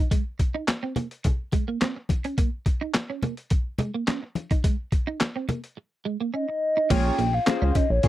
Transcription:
0.11 clean electric guitar G#3, kick, closed hi-hat
0.39 muted clean electric guitar stroke, kick, closed hi-hat, muted conga
0.54 clean electric guitar D#4
0.68 muted clean electric guitar stroke, snare, clap, closed hi-hat, high conga
0.83 clean electric guitar C4
0.96 clean electric guitar A#3, closed hi-hat, muted conga, low conga
1.11 closed hi-hat
1.24 muted clean electric guitar stroke, kick, closed hi-hat, low conga
1.52 clean electric guitar G#3, kick, closed hi-hat, muted conga
1.68 clean electric guitar A#3
1.81 clean electric guitar C4, snare, clap, closed hi-hat, high conga
1.96 muted clean electric guitar stroke
2.09 kick, closed hi-hat, high conga
2.24 clean electric guitar C#4, closed hi-hat
2.38 clean electric guitar A#3, kick, closed hi-hat
2.66 muted clean electric guitar stroke, kick, closed hi-hat, muted conga
2.81 clean electric guitar D#4
2.94 muted clean electric guitar stroke, snare, clap, closed hi-hat, high conga
3.10 clean electric guitar C#4
3.23 clean electric guitar A#3, closed hi-hat, muted conga, low conga
3.37 closed hi-hat
3.50 muted clean electric guitar stroke, kick, closed hi-hat
3.78 clean electric guitar G#3, closed hi-hat, muted conga, low conga
3.94 clean electric guitar A#3
4.07 clean electric guitar C#4, snare, clap, closed hi-hat, high conga
4.23 muted clean electric guitar stroke
4.35 closed hi-hat, high conga
4.51 clean electric guitar D#4, kick, closed hi-hat
4.64 clean electric guitar G#3, kick, closed hi-hat
4.92 muted clean electric guitar stroke, kick, closed hi-hat, muted conga
5.07 clean electric guitar D#4
5.20 muted clean electric guitar stroke, snare, clap, closed hi-hat, high conga
5.36 clean electric guitar C4
5.49 clean electric guitar A#3, closed hi-hat, muted conga, low conga
5.64 closed hi-hat
5.77 muted clean electric guitar stroke
6.05 clean electric guitar G#3
6.21 clean electric guitar A#3
6.34 clean electric guitar C#4, soft synth lead D#5
6.49 muted clean electric guitar stroke
6.77 clean electric guitar D#4
6.90 analog synth bass A#1, clean electric guitar G#3, analog polysynth A#3 C#4 F4 G#4 C#5, soft synth lead G5, kick, closed hi-hat, crash
7.18 analog synth bass A#1, clean electric guitar A#3, closed hi-hat
7.33 soft synth lead F5, muted clean electric guitar stroke
7.47 analog polysynth A#3 C#4 F4 G#4 C5, muted clean electric guitar stroke, snare, clap, closed hi-hat, high conga
7.62 analog synth bass C#2, clean electric guitar C#4
7.72 clean electric guitar C#4, soft synth lead D#5 F5, kick, closed hi-hat, muted conga
7.90 analog synth bass A#1, soft synth lead C#5
8.03 analog synth bass A#2, analog polysynth A#3 C#4 F4 G#4 C#5, muted clean electric guitar stroke, kick, closed hi-hat

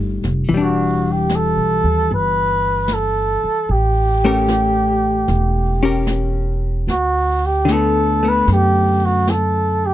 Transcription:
Already playing: upright bass G1, hollow-body jazz guitar G3 A3 D#4
0.23 upright bass F1, snare
0.49 upright bass E1, hollow-body jazz guitar E3, brush sweep
0.54 hollow-body jazz guitar G3 D4
0.60 muted trumpet F#4
1.11 muted trumpet G4
1.29 snare, hi-hat pedal
1.35 muted trumpet A4
1.57 upright bass B1
1.84 upright bass D#2
2.08 upright bass G1, brush sweep
2.14 muted trumpet B4
2.88 snare, hi-hat pedal
2.94 muted trumpet A4
3.44 muted upright bass stroke
3.68 upright bass A1, muted trumpet G4, brush sweep
4.25 hollow-body jazz guitar A3 C#4 G4 A#4
4.48 snare, hi-hat pedal
5.28 upright bass E1, brush sweep, snare
5.83 hollow-body jazz guitar C#4 G4 A#4
6.07 snare, hi-hat pedal
6.87 upright bass D2, muted trumpet F#4, brush sweep, snare
7.46 muted trumpet G4
7.65 hollow-body jazz guitar D3 A3, snare, hi-hat pedal
7.72 hollow-body jazz guitar B3, muted trumpet A4
8.23 hollow-body jazz guitar A3 B3
8.28 muted trumpet B4
8.47 upright bass F#2, brush sweep, snare
8.53 muted trumpet G4
9.05 muted trumpet F#4
9.27 muted trumpet A4, snare, hi-hat pedal
9.86 muted trumpet G4

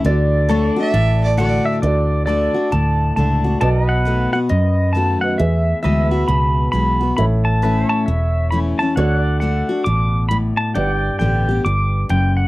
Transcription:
0.05 fingered electric bass D2, steel-string acoustic guitar D3, upright piano F#4 A4 D5, pedal steel guitar D5
0.49 steel-string acoustic guitar D3 A3 D4 F#4, pedal steel guitar A4 C#5
0.71 pedal steel guitar D5
0.76 steel-string acoustic guitar D4 F#4, fiddle E5
0.94 fingered electric bass A1, steel-string acoustic guitar A2
1.24 fiddle D5
1.38 steel-string acoustic guitar D3 A3 D4 F#4, fiddle D5, pedal steel guitar F#5
1.65 pedal steel guitar E5
1.82 fingered electric bass D2, steel-string acoustic guitar D3, upright piano F#4 A4 D5, pedal steel guitar D5
2.26 steel-string acoustic guitar D3 A3 D4 F#4, pedal steel guitar A4 D5
2.54 steel-string acoustic guitar D4 F#4
2.72 fingered electric bass D2, steel-string acoustic guitar A2, pedal steel guitar A5
3.16 fingered electric bass C#2, steel-string acoustic guitar D3 A3 D4 F#4, pedal steel guitar A5
3.44 steel-string acoustic guitar D4 F#4
3.61 fingered electric bass B1, steel-string acoustic guitar B2, upright piano F#4 B4 D#5, pedal steel guitar A4 D5 A5
3.83 pedal steel guitar B4 D#5
3.89 pedal steel guitar F#5
4.05 steel-string acoustic guitar D#3 A3 B3 F#4
4.33 steel-string acoustic guitar B3 F#4, pedal steel guitar F#5
4.49 steel-string acoustic guitar F#2, fingered electric bass F#2, pedal steel guitar D#5
4.93 steel-string acoustic guitar D#3 A3 B3, pedal steel guitar A5
4.97 steel-string acoustic guitar F#4
5.21 upright piano F#4 B4 D#5, pedal steel guitar F#5
5.38 steel-string acoustic guitar E2, fingered electric bass E2, upright piano G#4 B4 E5, pedal steel guitar E5
5.83 fingered electric bass D2, steel-string acoustic guitar E3 G#3 B3 F#4, pedal steel guitar B4 D#5 E5
6.05 pedal steel guitar E5
6.11 steel-string acoustic guitar B3 F#4
6.28 fingered electric bass C#2, steel-string acoustic guitar B2, pedal steel guitar B5
6.72 fingered electric bass B1, steel-string acoustic guitar E3 G#3 B3 F#4, pedal steel guitar B5
7.01 steel-string acoustic guitar B3 F#4
7.17 fingered electric bass A1, steel-string acoustic guitar A2, upright piano A4 C#5 E5, pedal steel guitar B5
7.45 pedal steel guitar A5
7.62 steel-string acoustic guitar E3 A3 C#4 E4, pedal steel guitar B4 E5
7.88 pedal steel guitar C#5 A5
8.06 fingered electric bass E1, steel-string acoustic guitar E2, pedal steel guitar E5
8.51 steel-string acoustic guitar E3 A3 C#4 E4, pedal steel guitar B5
8.79 steel-string acoustic guitar C#4 E4, pedal steel guitar A5
8.96 fingered electric bass D2, steel-string acoustic guitar D3, upright piano F#4 A4 D5, pedal steel guitar C#5 F#5
9.00 pedal steel guitar F#5
9.18 pedal steel guitar D5
9.40 steel-string acoustic guitar D3 A3 D4 F#4, pedal steel guitar F#5
9.69 steel-string acoustic guitar D4 F#4
9.84 fingered electric bass A1, steel-string acoustic guitar B2, pedal steel guitar D6
10.29 steel-string acoustic guitar A2, pedal steel guitar B5
10.57 pedal steel guitar A5
10.75 fingered electric bass G1, steel-string acoustic guitar G2, upright piano G4 B4 D5, pedal steel guitar D5 F#5 G5
10.96 pedal steel guitar G5
11.19 fingered electric bass A1, steel-string acoustic guitar D3 G3 B3 G4, pedal steel guitar G5
11.49 steel-string acoustic guitar B3 G4
11.65 fingered electric bass G1, steel-string acoustic guitar G2, pedal steel guitar D6
12.09 fingered electric bass F#1, steel-string acoustic guitar F#2, pedal steel guitar G5
12.37 pedal steel guitar F#5

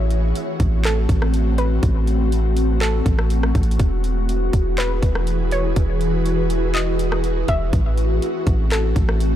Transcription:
Already playing: 808-style bass A1, ambient pad A3 C4 F#4
0.11 closed hi-hat
0.35 closed hi-hat
0.60 808-style bass A1, kick, closed hi-hat
0.84 synth pluck A4, clap, closed hi-hat
1.09 808-style bass A1, kick, closed hi-hat
1.22 cross-stick
1.34 closed hi-hat
1.58 synth pluck B4, closed hi-hat
1.83 808-style bass A1, kick, closed hi-hat
2.07 closed hi-hat
2.32 closed hi-hat
2.57 closed hi-hat
2.81 synth pluck A4, clap, closed hi-hat
3.06 808-style bass A1, kick, closed hi-hat
3.19 cross-stick
3.30 closed hi-hat
3.43 cross-stick
3.55 808-style bass A1, kick, closed hi-hat
3.63 closed hi-hat
3.71 closed hi-hat
3.79 808-style bass E1, ambient pad E3 E4 G#4 B4, kick, closed hi-hat
4.04 closed hi-hat
4.29 closed hi-hat
4.53 808-style bass E1, kick, closed hi-hat
4.78 synth pluck B4, clap, closed hi-hat
5.02 808-style bass E1, kick, closed hi-hat
5.15 cross-stick
5.27 closed hi-hat
5.51 synth pluck C#5, closed hi-hat
5.76 808-style bass E1, kick, closed hi-hat
6.01 closed hi-hat
6.26 closed hi-hat
6.50 closed hi-hat
6.74 synth pluck D#5, clap, closed hi-hat
6.99 closed hi-hat
7.12 cross-stick
7.24 closed hi-hat
7.48 808-style bass E1, synth pluck E5, kick, closed hi-hat
7.73 808-style bass A1, ambient pad A3 C4, kick, closed hi-hat
7.98 closed hi-hat
8.22 closed hi-hat
8.47 808-style bass A1, kick, closed hi-hat
8.71 synth pluck A4, clap, closed hi-hat
8.96 808-style bass A1, kick, closed hi-hat
9.09 cross-stick
9.20 closed hi-hat

